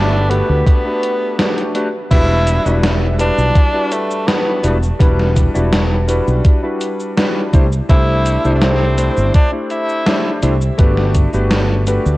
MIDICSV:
0, 0, Header, 1, 6, 480
1, 0, Start_track
1, 0, Key_signature, 1, "minor"
1, 0, Tempo, 722892
1, 1403, Time_signature, 4, 2, 24, 8
1, 8084, End_track
2, 0, Start_track
2, 0, Title_t, "Analog synth pad"
2, 0, Program_c, 0, 89
2, 0, Note_on_c, 0, 69, 83
2, 0, Note_on_c, 0, 78, 80
2, 0, Note_on_c, 0, 83, 91
2, 1378, Note_off_c, 0, 69, 0
2, 1384, Note_off_c, 0, 83, 0
2, 1385, Note_off_c, 0, 78, 0
2, 8084, End_track
3, 0, Start_track
3, 0, Title_t, "Electric grand piano"
3, 0, Program_c, 1, 2
3, 0, Note_on_c, 1, 57, 90
3, 0, Note_on_c, 1, 62, 85
3, 0, Note_on_c, 1, 66, 85
3, 0, Note_on_c, 1, 67, 82
3, 0, Note_on_c, 1, 71, 102
3, 172, Note_off_c, 1, 57, 0
3, 173, Note_off_c, 1, 62, 0
3, 174, Note_off_c, 1, 66, 0
3, 175, Note_off_c, 1, 67, 0
3, 177, Note_off_c, 1, 71, 0
3, 195, Note_on_c, 1, 57, 88
3, 199, Note_on_c, 1, 62, 79
3, 201, Note_on_c, 1, 66, 79
3, 204, Note_on_c, 1, 67, 84
3, 206, Note_on_c, 1, 71, 99
3, 535, Note_off_c, 1, 57, 0
3, 536, Note_off_c, 1, 62, 0
3, 538, Note_off_c, 1, 66, 0
3, 539, Note_off_c, 1, 67, 0
3, 540, Note_off_c, 1, 71, 0
3, 560, Note_on_c, 1, 57, 78
3, 563, Note_on_c, 1, 62, 75
3, 567, Note_on_c, 1, 66, 72
3, 568, Note_on_c, 1, 67, 74
3, 571, Note_on_c, 1, 71, 88
3, 891, Note_off_c, 1, 57, 0
3, 893, Note_off_c, 1, 62, 0
3, 895, Note_off_c, 1, 66, 0
3, 895, Note_off_c, 1, 67, 0
3, 897, Note_off_c, 1, 71, 0
3, 918, Note_on_c, 1, 57, 84
3, 921, Note_on_c, 1, 62, 75
3, 923, Note_on_c, 1, 66, 76
3, 927, Note_on_c, 1, 67, 78
3, 929, Note_on_c, 1, 71, 93
3, 1133, Note_off_c, 1, 57, 0
3, 1135, Note_off_c, 1, 62, 0
3, 1135, Note_off_c, 1, 66, 0
3, 1138, Note_off_c, 1, 67, 0
3, 1138, Note_off_c, 1, 71, 0
3, 1157, Note_on_c, 1, 57, 98
3, 1160, Note_on_c, 1, 62, 91
3, 1162, Note_on_c, 1, 66, 88
3, 1164, Note_on_c, 1, 67, 88
3, 1167, Note_on_c, 1, 71, 107
3, 1234, Note_off_c, 1, 57, 0
3, 1235, Note_off_c, 1, 62, 0
3, 1236, Note_off_c, 1, 66, 0
3, 1237, Note_off_c, 1, 67, 0
3, 1239, Note_off_c, 1, 71, 0
3, 1398, Note_on_c, 1, 55, 99
3, 1400, Note_on_c, 1, 62, 93
3, 1402, Note_on_c, 1, 64, 90
3, 1404, Note_on_c, 1, 66, 89
3, 1407, Note_on_c, 1, 71, 109
3, 1736, Note_off_c, 1, 55, 0
3, 1737, Note_off_c, 1, 62, 0
3, 1738, Note_off_c, 1, 64, 0
3, 1739, Note_off_c, 1, 66, 0
3, 1740, Note_off_c, 1, 71, 0
3, 1760, Note_on_c, 1, 55, 90
3, 1763, Note_on_c, 1, 62, 82
3, 1765, Note_on_c, 1, 64, 81
3, 1768, Note_on_c, 1, 66, 83
3, 1769, Note_on_c, 1, 71, 101
3, 2091, Note_off_c, 1, 55, 0
3, 2092, Note_off_c, 1, 62, 0
3, 2094, Note_off_c, 1, 64, 0
3, 2095, Note_off_c, 1, 66, 0
3, 2096, Note_off_c, 1, 71, 0
3, 2114, Note_on_c, 1, 55, 89
3, 2116, Note_on_c, 1, 62, 84
3, 2119, Note_on_c, 1, 64, 85
3, 2123, Note_on_c, 1, 66, 80
3, 2124, Note_on_c, 1, 71, 100
3, 2454, Note_off_c, 1, 55, 0
3, 2455, Note_off_c, 1, 62, 0
3, 2456, Note_off_c, 1, 64, 0
3, 2458, Note_off_c, 1, 66, 0
3, 2459, Note_off_c, 1, 71, 0
3, 2479, Note_on_c, 1, 55, 80
3, 2481, Note_on_c, 1, 62, 73
3, 2484, Note_on_c, 1, 64, 75
3, 2486, Note_on_c, 1, 66, 74
3, 2488, Note_on_c, 1, 71, 88
3, 2811, Note_off_c, 1, 55, 0
3, 2812, Note_off_c, 1, 62, 0
3, 2813, Note_off_c, 1, 64, 0
3, 2814, Note_off_c, 1, 66, 0
3, 2815, Note_off_c, 1, 71, 0
3, 2831, Note_on_c, 1, 55, 83
3, 2834, Note_on_c, 1, 62, 79
3, 2835, Note_on_c, 1, 64, 76
3, 2838, Note_on_c, 1, 66, 76
3, 2842, Note_on_c, 1, 71, 92
3, 3050, Note_off_c, 1, 55, 0
3, 3051, Note_off_c, 1, 62, 0
3, 3052, Note_off_c, 1, 64, 0
3, 3053, Note_off_c, 1, 66, 0
3, 3055, Note_off_c, 1, 71, 0
3, 3077, Note_on_c, 1, 55, 100
3, 3079, Note_on_c, 1, 62, 89
3, 3081, Note_on_c, 1, 64, 88
3, 3083, Note_on_c, 1, 66, 88
3, 3085, Note_on_c, 1, 71, 106
3, 3153, Note_off_c, 1, 55, 0
3, 3155, Note_off_c, 1, 62, 0
3, 3156, Note_off_c, 1, 64, 0
3, 3157, Note_off_c, 1, 66, 0
3, 3158, Note_off_c, 1, 71, 0
3, 3315, Note_on_c, 1, 55, 100
3, 3317, Note_on_c, 1, 62, 93
3, 3321, Note_on_c, 1, 64, 94
3, 3324, Note_on_c, 1, 66, 90
3, 3326, Note_on_c, 1, 71, 110
3, 3655, Note_off_c, 1, 55, 0
3, 3656, Note_off_c, 1, 62, 0
3, 3657, Note_off_c, 1, 64, 0
3, 3659, Note_off_c, 1, 66, 0
3, 3660, Note_off_c, 1, 71, 0
3, 3678, Note_on_c, 1, 55, 94
3, 3680, Note_on_c, 1, 62, 84
3, 3682, Note_on_c, 1, 64, 86
3, 3686, Note_on_c, 1, 66, 86
3, 3687, Note_on_c, 1, 71, 99
3, 4010, Note_off_c, 1, 55, 0
3, 4011, Note_off_c, 1, 62, 0
3, 4012, Note_off_c, 1, 64, 0
3, 4014, Note_off_c, 1, 66, 0
3, 4015, Note_off_c, 1, 71, 0
3, 4034, Note_on_c, 1, 55, 91
3, 4038, Note_on_c, 1, 62, 83
3, 4041, Note_on_c, 1, 64, 84
3, 4042, Note_on_c, 1, 66, 83
3, 4045, Note_on_c, 1, 71, 100
3, 4374, Note_off_c, 1, 55, 0
3, 4376, Note_off_c, 1, 62, 0
3, 4377, Note_off_c, 1, 64, 0
3, 4378, Note_off_c, 1, 66, 0
3, 4379, Note_off_c, 1, 71, 0
3, 4401, Note_on_c, 1, 55, 82
3, 4404, Note_on_c, 1, 62, 74
3, 4406, Note_on_c, 1, 64, 73
3, 4408, Note_on_c, 1, 66, 75
3, 4412, Note_on_c, 1, 71, 88
3, 4732, Note_off_c, 1, 55, 0
3, 4733, Note_off_c, 1, 62, 0
3, 4734, Note_off_c, 1, 64, 0
3, 4735, Note_off_c, 1, 66, 0
3, 4737, Note_off_c, 1, 71, 0
3, 4757, Note_on_c, 1, 55, 86
3, 4760, Note_on_c, 1, 62, 78
3, 4763, Note_on_c, 1, 64, 78
3, 4766, Note_on_c, 1, 66, 77
3, 4768, Note_on_c, 1, 71, 94
3, 4973, Note_off_c, 1, 55, 0
3, 4974, Note_off_c, 1, 62, 0
3, 4975, Note_off_c, 1, 64, 0
3, 4977, Note_off_c, 1, 66, 0
3, 4978, Note_off_c, 1, 71, 0
3, 4999, Note_on_c, 1, 57, 99
3, 5000, Note_on_c, 1, 62, 89
3, 5004, Note_on_c, 1, 64, 88
3, 5006, Note_on_c, 1, 67, 93
3, 5010, Note_on_c, 1, 72, 106
3, 5074, Note_off_c, 1, 57, 0
3, 5075, Note_off_c, 1, 62, 0
3, 5077, Note_off_c, 1, 64, 0
3, 5078, Note_off_c, 1, 67, 0
3, 5080, Note_off_c, 1, 72, 0
3, 5239, Note_on_c, 1, 57, 102
3, 5241, Note_on_c, 1, 62, 91
3, 5244, Note_on_c, 1, 64, 93
3, 5245, Note_on_c, 1, 67, 95
3, 5249, Note_on_c, 1, 72, 108
3, 5577, Note_off_c, 1, 57, 0
3, 5578, Note_off_c, 1, 62, 0
3, 5579, Note_off_c, 1, 64, 0
3, 5580, Note_off_c, 1, 67, 0
3, 5581, Note_off_c, 1, 72, 0
3, 5605, Note_on_c, 1, 57, 94
3, 5606, Note_on_c, 1, 62, 85
3, 5610, Note_on_c, 1, 64, 86
3, 5613, Note_on_c, 1, 67, 86
3, 5614, Note_on_c, 1, 72, 105
3, 5934, Note_off_c, 1, 57, 0
3, 5934, Note_off_c, 1, 62, 0
3, 5936, Note_off_c, 1, 64, 0
3, 5938, Note_off_c, 1, 67, 0
3, 5938, Note_off_c, 1, 72, 0
3, 5953, Note_on_c, 1, 57, 92
3, 5955, Note_on_c, 1, 62, 84
3, 5960, Note_on_c, 1, 64, 86
3, 5961, Note_on_c, 1, 67, 82
3, 5964, Note_on_c, 1, 72, 99
3, 6293, Note_off_c, 1, 57, 0
3, 6295, Note_off_c, 1, 62, 0
3, 6297, Note_off_c, 1, 64, 0
3, 6297, Note_off_c, 1, 67, 0
3, 6299, Note_off_c, 1, 72, 0
3, 6319, Note_on_c, 1, 57, 78
3, 6324, Note_on_c, 1, 62, 73
3, 6325, Note_on_c, 1, 64, 73
3, 6328, Note_on_c, 1, 67, 75
3, 6331, Note_on_c, 1, 72, 90
3, 6651, Note_off_c, 1, 57, 0
3, 6653, Note_off_c, 1, 62, 0
3, 6653, Note_off_c, 1, 64, 0
3, 6655, Note_off_c, 1, 67, 0
3, 6656, Note_off_c, 1, 72, 0
3, 6675, Note_on_c, 1, 57, 85
3, 6678, Note_on_c, 1, 62, 78
3, 6681, Note_on_c, 1, 64, 79
3, 6683, Note_on_c, 1, 67, 76
3, 6686, Note_on_c, 1, 72, 92
3, 6891, Note_off_c, 1, 57, 0
3, 6893, Note_off_c, 1, 62, 0
3, 6894, Note_off_c, 1, 64, 0
3, 6896, Note_off_c, 1, 67, 0
3, 6897, Note_off_c, 1, 72, 0
3, 6918, Note_on_c, 1, 57, 98
3, 6920, Note_on_c, 1, 62, 92
3, 6922, Note_on_c, 1, 64, 91
3, 6924, Note_on_c, 1, 67, 92
3, 6927, Note_on_c, 1, 72, 107
3, 6994, Note_off_c, 1, 57, 0
3, 6995, Note_off_c, 1, 62, 0
3, 6996, Note_off_c, 1, 64, 0
3, 6997, Note_off_c, 1, 67, 0
3, 6999, Note_off_c, 1, 72, 0
3, 7155, Note_on_c, 1, 57, 102
3, 7159, Note_on_c, 1, 62, 93
3, 7161, Note_on_c, 1, 66, 95
3, 7165, Note_on_c, 1, 67, 90
3, 7167, Note_on_c, 1, 71, 109
3, 7495, Note_off_c, 1, 57, 0
3, 7496, Note_off_c, 1, 62, 0
3, 7497, Note_off_c, 1, 66, 0
3, 7499, Note_off_c, 1, 67, 0
3, 7500, Note_off_c, 1, 71, 0
3, 7523, Note_on_c, 1, 57, 93
3, 7526, Note_on_c, 1, 62, 82
3, 7529, Note_on_c, 1, 66, 85
3, 7532, Note_on_c, 1, 67, 83
3, 7533, Note_on_c, 1, 71, 101
3, 7853, Note_off_c, 1, 57, 0
3, 7854, Note_off_c, 1, 62, 0
3, 7856, Note_off_c, 1, 66, 0
3, 7857, Note_off_c, 1, 67, 0
3, 7858, Note_off_c, 1, 71, 0
3, 7880, Note_on_c, 1, 57, 89
3, 7881, Note_on_c, 1, 62, 81
3, 7885, Note_on_c, 1, 66, 80
3, 7886, Note_on_c, 1, 67, 84
3, 7889, Note_on_c, 1, 71, 101
3, 8084, Note_off_c, 1, 57, 0
3, 8084, Note_off_c, 1, 62, 0
3, 8084, Note_off_c, 1, 66, 0
3, 8084, Note_off_c, 1, 67, 0
3, 8084, Note_off_c, 1, 71, 0
3, 8084, End_track
4, 0, Start_track
4, 0, Title_t, "Tenor saxophone"
4, 0, Program_c, 2, 66
4, 0, Note_on_c, 2, 62, 103
4, 203, Note_on_c, 2, 59, 92
4, 213, Note_off_c, 2, 62, 0
4, 440, Note_off_c, 2, 59, 0
4, 444, Note_on_c, 2, 59, 92
4, 1137, Note_off_c, 2, 59, 0
4, 1402, Note_on_c, 2, 64, 123
4, 1856, Note_off_c, 2, 64, 0
4, 2131, Note_on_c, 2, 62, 122
4, 2605, Note_on_c, 2, 57, 96
4, 2615, Note_off_c, 2, 62, 0
4, 2843, Note_on_c, 2, 59, 91
4, 2853, Note_off_c, 2, 57, 0
4, 3209, Note_off_c, 2, 59, 0
4, 5247, Note_on_c, 2, 64, 124
4, 5654, Note_off_c, 2, 64, 0
4, 5679, Note_on_c, 2, 62, 70
4, 5727, Note_on_c, 2, 60, 106
4, 5737, Note_off_c, 2, 62, 0
4, 6203, Note_off_c, 2, 60, 0
4, 6207, Note_on_c, 2, 62, 101
4, 6313, Note_off_c, 2, 62, 0
4, 6448, Note_on_c, 2, 64, 99
4, 6899, Note_off_c, 2, 64, 0
4, 8084, End_track
5, 0, Start_track
5, 0, Title_t, "Fretless electric bass"
5, 0, Program_c, 3, 35
5, 0, Note_on_c, 3, 31, 79
5, 271, Note_off_c, 3, 31, 0
5, 327, Note_on_c, 3, 38, 82
5, 409, Note_off_c, 3, 38, 0
5, 1402, Note_on_c, 3, 28, 98
5, 1711, Note_off_c, 3, 28, 0
5, 1764, Note_on_c, 3, 28, 78
5, 2189, Note_off_c, 3, 28, 0
5, 2246, Note_on_c, 3, 35, 86
5, 2329, Note_off_c, 3, 35, 0
5, 3081, Note_on_c, 3, 28, 96
5, 3257, Note_off_c, 3, 28, 0
5, 3321, Note_on_c, 3, 28, 99
5, 3630, Note_off_c, 3, 28, 0
5, 3690, Note_on_c, 3, 28, 77
5, 4112, Note_off_c, 3, 28, 0
5, 4167, Note_on_c, 3, 35, 89
5, 4249, Note_off_c, 3, 35, 0
5, 5003, Note_on_c, 3, 36, 95
5, 5178, Note_off_c, 3, 36, 0
5, 5244, Note_on_c, 3, 36, 103
5, 5552, Note_off_c, 3, 36, 0
5, 5609, Note_on_c, 3, 36, 80
5, 6031, Note_off_c, 3, 36, 0
5, 6090, Note_on_c, 3, 31, 88
5, 6171, Note_off_c, 3, 31, 0
5, 6923, Note_on_c, 3, 36, 95
5, 7098, Note_off_c, 3, 36, 0
5, 7164, Note_on_c, 3, 31, 99
5, 7472, Note_off_c, 3, 31, 0
5, 7529, Note_on_c, 3, 31, 77
5, 7951, Note_off_c, 3, 31, 0
5, 8007, Note_on_c, 3, 38, 89
5, 8084, Note_off_c, 3, 38, 0
5, 8084, End_track
6, 0, Start_track
6, 0, Title_t, "Drums"
6, 204, Note_on_c, 9, 42, 65
6, 271, Note_off_c, 9, 42, 0
6, 441, Note_on_c, 9, 36, 113
6, 445, Note_on_c, 9, 42, 75
6, 508, Note_off_c, 9, 36, 0
6, 511, Note_off_c, 9, 42, 0
6, 685, Note_on_c, 9, 42, 64
6, 751, Note_off_c, 9, 42, 0
6, 923, Note_on_c, 9, 38, 114
6, 923, Note_on_c, 9, 42, 81
6, 990, Note_off_c, 9, 38, 0
6, 990, Note_off_c, 9, 42, 0
6, 1048, Note_on_c, 9, 42, 37
6, 1114, Note_off_c, 9, 42, 0
6, 1161, Note_on_c, 9, 42, 65
6, 1227, Note_off_c, 9, 42, 0
6, 1401, Note_on_c, 9, 36, 117
6, 1402, Note_on_c, 9, 42, 81
6, 1402, Note_on_c, 9, 49, 103
6, 1402, Note_on_c, 9, 69, 29
6, 1468, Note_off_c, 9, 36, 0
6, 1469, Note_off_c, 9, 42, 0
6, 1469, Note_off_c, 9, 49, 0
6, 1469, Note_off_c, 9, 69, 0
6, 1641, Note_on_c, 9, 42, 71
6, 1641, Note_on_c, 9, 69, 69
6, 1707, Note_off_c, 9, 42, 0
6, 1707, Note_off_c, 9, 69, 0
6, 1768, Note_on_c, 9, 69, 37
6, 1834, Note_off_c, 9, 69, 0
6, 1883, Note_on_c, 9, 38, 123
6, 1883, Note_on_c, 9, 42, 86
6, 1883, Note_on_c, 9, 69, 30
6, 1949, Note_off_c, 9, 38, 0
6, 1949, Note_off_c, 9, 42, 0
6, 1949, Note_off_c, 9, 69, 0
6, 2121, Note_on_c, 9, 42, 70
6, 2121, Note_on_c, 9, 69, 68
6, 2188, Note_off_c, 9, 42, 0
6, 2188, Note_off_c, 9, 69, 0
6, 2248, Note_on_c, 9, 69, 39
6, 2315, Note_off_c, 9, 69, 0
6, 2361, Note_on_c, 9, 36, 122
6, 2362, Note_on_c, 9, 42, 82
6, 2362, Note_on_c, 9, 69, 29
6, 2427, Note_off_c, 9, 36, 0
6, 2428, Note_off_c, 9, 42, 0
6, 2428, Note_off_c, 9, 69, 0
6, 2602, Note_on_c, 9, 42, 67
6, 2602, Note_on_c, 9, 69, 67
6, 2668, Note_off_c, 9, 42, 0
6, 2668, Note_off_c, 9, 69, 0
6, 2728, Note_on_c, 9, 69, 38
6, 2794, Note_off_c, 9, 69, 0
6, 2843, Note_on_c, 9, 38, 121
6, 2843, Note_on_c, 9, 42, 81
6, 2843, Note_on_c, 9, 69, 30
6, 2909, Note_off_c, 9, 38, 0
6, 2909, Note_off_c, 9, 42, 0
6, 2909, Note_off_c, 9, 69, 0
6, 3081, Note_on_c, 9, 42, 69
6, 3081, Note_on_c, 9, 69, 65
6, 3147, Note_off_c, 9, 42, 0
6, 3147, Note_off_c, 9, 69, 0
6, 3207, Note_on_c, 9, 69, 39
6, 3274, Note_off_c, 9, 69, 0
6, 3322, Note_on_c, 9, 36, 123
6, 3323, Note_on_c, 9, 42, 85
6, 3323, Note_on_c, 9, 69, 29
6, 3388, Note_off_c, 9, 36, 0
6, 3390, Note_off_c, 9, 42, 0
6, 3390, Note_off_c, 9, 69, 0
6, 3450, Note_on_c, 9, 38, 38
6, 3516, Note_off_c, 9, 38, 0
6, 3561, Note_on_c, 9, 36, 65
6, 3562, Note_on_c, 9, 42, 71
6, 3562, Note_on_c, 9, 69, 67
6, 3628, Note_off_c, 9, 36, 0
6, 3629, Note_off_c, 9, 42, 0
6, 3629, Note_off_c, 9, 69, 0
6, 3687, Note_on_c, 9, 69, 38
6, 3754, Note_off_c, 9, 69, 0
6, 3802, Note_on_c, 9, 38, 123
6, 3802, Note_on_c, 9, 42, 85
6, 3802, Note_on_c, 9, 69, 28
6, 3868, Note_off_c, 9, 38, 0
6, 3868, Note_off_c, 9, 42, 0
6, 3868, Note_off_c, 9, 69, 0
6, 4042, Note_on_c, 9, 42, 69
6, 4042, Note_on_c, 9, 69, 66
6, 4108, Note_off_c, 9, 42, 0
6, 4108, Note_off_c, 9, 69, 0
6, 4168, Note_on_c, 9, 69, 38
6, 4235, Note_off_c, 9, 69, 0
6, 4282, Note_on_c, 9, 36, 127
6, 4282, Note_on_c, 9, 42, 81
6, 4282, Note_on_c, 9, 69, 28
6, 4348, Note_off_c, 9, 42, 0
6, 4348, Note_off_c, 9, 69, 0
6, 4349, Note_off_c, 9, 36, 0
6, 4522, Note_on_c, 9, 42, 68
6, 4522, Note_on_c, 9, 69, 66
6, 4589, Note_off_c, 9, 42, 0
6, 4589, Note_off_c, 9, 69, 0
6, 4647, Note_on_c, 9, 69, 38
6, 4713, Note_off_c, 9, 69, 0
6, 4763, Note_on_c, 9, 38, 126
6, 4763, Note_on_c, 9, 42, 85
6, 4763, Note_on_c, 9, 69, 28
6, 4830, Note_off_c, 9, 38, 0
6, 4830, Note_off_c, 9, 42, 0
6, 4830, Note_off_c, 9, 69, 0
6, 5003, Note_on_c, 9, 36, 112
6, 5004, Note_on_c, 9, 42, 68
6, 5004, Note_on_c, 9, 69, 65
6, 5069, Note_off_c, 9, 36, 0
6, 5070, Note_off_c, 9, 42, 0
6, 5070, Note_off_c, 9, 69, 0
6, 5129, Note_on_c, 9, 69, 38
6, 5196, Note_off_c, 9, 69, 0
6, 5243, Note_on_c, 9, 36, 123
6, 5244, Note_on_c, 9, 42, 83
6, 5244, Note_on_c, 9, 69, 28
6, 5309, Note_off_c, 9, 36, 0
6, 5310, Note_off_c, 9, 42, 0
6, 5310, Note_off_c, 9, 69, 0
6, 5484, Note_on_c, 9, 42, 67
6, 5484, Note_on_c, 9, 69, 64
6, 5550, Note_off_c, 9, 42, 0
6, 5550, Note_off_c, 9, 69, 0
6, 5609, Note_on_c, 9, 69, 35
6, 5676, Note_off_c, 9, 69, 0
6, 5721, Note_on_c, 9, 38, 127
6, 5721, Note_on_c, 9, 42, 83
6, 5721, Note_on_c, 9, 69, 28
6, 5787, Note_off_c, 9, 38, 0
6, 5787, Note_off_c, 9, 42, 0
6, 5787, Note_off_c, 9, 69, 0
6, 5963, Note_on_c, 9, 42, 68
6, 5963, Note_on_c, 9, 69, 66
6, 6029, Note_off_c, 9, 42, 0
6, 6029, Note_off_c, 9, 69, 0
6, 6088, Note_on_c, 9, 69, 36
6, 6154, Note_off_c, 9, 69, 0
6, 6202, Note_on_c, 9, 42, 80
6, 6202, Note_on_c, 9, 69, 27
6, 6204, Note_on_c, 9, 36, 126
6, 6269, Note_off_c, 9, 42, 0
6, 6269, Note_off_c, 9, 69, 0
6, 6270, Note_off_c, 9, 36, 0
6, 6442, Note_on_c, 9, 42, 67
6, 6442, Note_on_c, 9, 69, 62
6, 6509, Note_off_c, 9, 42, 0
6, 6509, Note_off_c, 9, 69, 0
6, 6568, Note_on_c, 9, 69, 36
6, 6634, Note_off_c, 9, 69, 0
6, 6682, Note_on_c, 9, 38, 127
6, 6682, Note_on_c, 9, 42, 83
6, 6682, Note_on_c, 9, 69, 28
6, 6748, Note_off_c, 9, 38, 0
6, 6748, Note_off_c, 9, 42, 0
6, 6748, Note_off_c, 9, 69, 0
6, 6922, Note_on_c, 9, 42, 66
6, 6922, Note_on_c, 9, 69, 63
6, 6988, Note_off_c, 9, 42, 0
6, 6988, Note_off_c, 9, 69, 0
6, 7048, Note_on_c, 9, 69, 37
6, 7114, Note_off_c, 9, 69, 0
6, 7162, Note_on_c, 9, 42, 81
6, 7162, Note_on_c, 9, 69, 27
6, 7164, Note_on_c, 9, 36, 122
6, 7229, Note_off_c, 9, 42, 0
6, 7229, Note_off_c, 9, 69, 0
6, 7230, Note_off_c, 9, 36, 0
6, 7286, Note_on_c, 9, 38, 38
6, 7352, Note_off_c, 9, 38, 0
6, 7401, Note_on_c, 9, 42, 67
6, 7401, Note_on_c, 9, 69, 61
6, 7404, Note_on_c, 9, 36, 64
6, 7467, Note_off_c, 9, 42, 0
6, 7467, Note_off_c, 9, 69, 0
6, 7471, Note_off_c, 9, 36, 0
6, 7526, Note_on_c, 9, 69, 35
6, 7592, Note_off_c, 9, 69, 0
6, 7642, Note_on_c, 9, 38, 127
6, 7642, Note_on_c, 9, 42, 80
6, 7642, Note_on_c, 9, 69, 27
6, 7708, Note_off_c, 9, 38, 0
6, 7708, Note_off_c, 9, 42, 0
6, 7708, Note_off_c, 9, 69, 0
6, 7882, Note_on_c, 9, 42, 66
6, 7882, Note_on_c, 9, 69, 62
6, 7948, Note_off_c, 9, 42, 0
6, 7948, Note_off_c, 9, 69, 0
6, 8008, Note_on_c, 9, 69, 36
6, 8074, Note_off_c, 9, 69, 0
6, 8084, End_track
0, 0, End_of_file